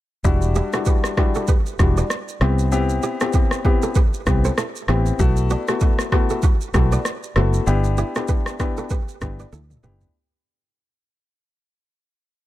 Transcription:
0.24 E1 G3 D4 E4 F#4, kick, shaker
0.42 shaker
0.55 E4 G4, shaker
0.73 G3 D4 E4 F#4 A4, cross-stick, shaker
0.85 G4 B4, kick, shaker
1.04 cross-stick, shaker
1.17 G3 D4 E4 F#4 G4 B4, kick, cross-stick
1.35 F#4 A4, shaker
1.47 G4 B4, kick, shaker
1.66 shaker
1.79 E1 G3 D4 E4 F#4 G4 B4, kick, cross-stick, shaker
1.97 B4 D5, shaker
2.10 cross-stick, shaker
2.28 shaker
2.41 C2 B3 C4 E4 G4 C5 E5, cross-stick
2.59 shaker
2.72 B3 C4 E4 G4, shaker
2.89 shaker
3.02 E4 G4, shaker
3.20 B3 C4 E4 F#4 G4 A4, cross-stick, shaker
3.33 G4 B4, kick, shaker
3.51 cross-stick, shaker
3.64 B3 C4 E4 G4 B4, kick
3.82 F#4 A4, shaker
3.95 G4 B4, kick, shaker
4.14 shaker
4.26 C2 B3 C4 E4 G4 B4, kick, cross-stick, shaker
4.44 A4 C5, shaker
4.58 E4 A4, cross-stick, shaker
4.76 shaker
4.88 A1 B3 C4 E4 G4 B4, cross-stick
5.06 shaker
5.19 B1 A3 B3 E4 F#4, kick, shaker
5.36 shaker
5.50 D4 F#4, shaker
5.68 A3 B3 E4 F#4 A4, cross-stick, shaker
5.80 F#4 B4, kick, shaker
5.99 cross-stick, shaker
6.12 A3 B3 E4 F#4 G4 B4, kick, cross-stick
6.30 F#4 A4, shaker
6.42 F#4 B4, kick, shaker
6.61 shaker
6.74 B1 A3 B3 E4 F#4 G4 B4, kick, cross-stick, shaker
6.92 B4 D5, shaker
7.05 cross-stick, shaker
7.23 shaker
7.36 F#1 A3 B3 E4 F#4 C5 E5, cross-stick
7.53 shaker
7.67 G1 B3 D4 E4 G4, shaker
7.84 shaker
7.97 E4 G4, shaker
8.15 B3 D4 E4 F#4 G4 A4, cross-stick, shaker
8.28 G4 B4, kick, shaker
8.46 cross-stick, shaker
8.59 B3 D4 E4 G4 B4, kick, cross-stick, shaker
8.77 F#4 A4, shaker
8.90 G4 B4, kick, shaker
9.08 shaker
9.21 G1 B3 D4 E4 G4 B4, kick, cross-stick, shaker
9.39 B4 D5, shaker
9.52 D2 E4 A4, high tom, shaker
9.70 mid tom, shaker
9.83 F#1 B3 D4 E4 G4 B4, mid tom, shaker
10.01 floor tom, shaker

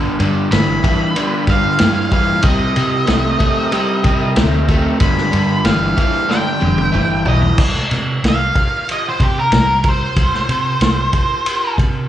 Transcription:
Already playing: G2 D3 D4 F4 G4 B4
0.19 G2 D3, ride
0.51 G1 G2 E3 B5, snare, ride
0.84 G2 E3, kick, ride
1.16 G2 D3, ride
1.47 G2 D3 F5, kick, ride
1.79 G2 E3, snare, ride
2.11 G2 E3 F5, kick, ride
2.43 C2 C3 G3 C4 D#4 G4 A#4 D#5, kick, ride
2.76 C3 G3, ride
3.07 C2 C3 A3, snare, ride
3.39 C3 A3, kick, ride
3.72 C3 G3, ride
4.03 C3 G3, kick, ride
4.36 D2 C3 A3, snare, ride
4.68 C3 A3, kick, ride
4.99 G1 G2 D3 D#4 F#4 G#4 C5 B5, kick, ride
5.17 D3 F4 B4, snare
5.22 G4
5.32 G2 D3, ride
5.65 G1 G2 E3 F5, snare, ride
5.97 G2 E3 F5, kick, ride
6.28 G2 D3 G5, snare
6.60 F1 G2 D3, high tom
6.78 high tom
6.92 G1 G2 E3, mid tom
7.25 B1 G2 E3 D#5, floor tom
7.42 floor tom
7.58 C2, kick, crash
7.76 snare
7.91 C3, snare, ride
8.24 C2, snare, ride
8.28 F5
8.55 kick, ride
8.89 D#5, ride
9.09 C5
9.20 C3 G4, kick, ride
9.40 A#4
9.52 C2, snare, ride
9.84 kick, ride
9.89 C5
10.16 C2, kick, ride
10.34 snare
10.49 C3, ride
10.81 C2, snare, ride
11.13 kick, ride
11.46 ride
11.78 C3, kick, ride

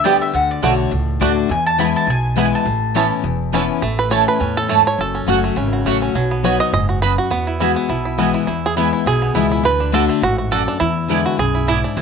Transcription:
Already playing: D2
0.04 D3 G3 B3 D4 G4 D5 G5
0.22 E5
0.33 D2 D3 F#5
0.51 D5
0.62 B1 D3 A3 D4 F#4 C#5 D5 F#5
0.91 C#2 A2
1.20 D2 D3 A3 D4 F#4 D5 F#5
1.49 E2 G#5
1.66 A5
1.78 E3 G#3 B3 E4 B4 G#5 B5
1.96 A5
2.07 B1 B2 G#5
2.36 E3 G#3 B3 E4 B4 G#5
2.45 G#5
2.55 A5
2.65 A1 A2
2.94 E3 A3 B3 C#4 E4 C#5 A5
3.24 E1 E2
3.52 E3 A3 B3 C#4 E4 C#5 A5
3.82 A1 A2 A3
3.99 B4
4.10 E3 A3 C#4 E4 C#5 A5
4.28 B4
4.40 E2 A2 C#4
4.57 A4
4.68 G#2 A3 E4 C#5 A5
4.87 C#5
4.98 F#1 F#2 A4
5.15 C#4
5.27 F#1 F#3 A3 C#4 F#4 C#5 F#5
5.44 A3
5.56 G#1 C#3 C#4
5.73 F#4
5.85 A1 F#3 A3 C#4 F#4 C#5 F#5
6.02 C#4
6.14 B1 B2 F#3
6.31 B3
6.43 F#3 B3 D#4 F#4 C#5 D#5 B5
6.60 D#5
6.73 F#1 G#2 D#5
6.89 F#4
7.02 F#2 B3 F#4 B4 D#5 B5
7.18 F#4
7.30 E2 B3
7.47 E4
7.60 E3 G#3 B3 E4 F#4 E5 G#5
7.76 B3
7.89 B1 B2 E4
8.05 E4
8.18 E3 G#3 B3 F#4 E5 G#5
8.34 E4
8.47 E2 E4
8.66 G#4
8.76 E3 G#3 B3 E4 B4 G#5
8.93 E4
9.06 B1 B2 G#4
9.22 B3
9.34 C#2 E3 G#3 B3 E4 B4 G#5
9.51 E4
9.63 D2 D3 B4
9.80 D4
9.92 D3 A3 D4 F#4 A4 D5 F#5
10.09 A3
10.22 A1 G#2 F#4
10.38 F#4
10.51 F#2 A3 F#4 A4 D5 F#5
10.68 D4
10.80 E2 E4
11.08 D3 G#3 B3 E4 D5 G#5
11.26 F#4
11.38 B1 F#2 G#4
11.55 E4
11.67 G#2 B3 E4 D5 G#5
11.84 D4
11.97 A1 A2 E3

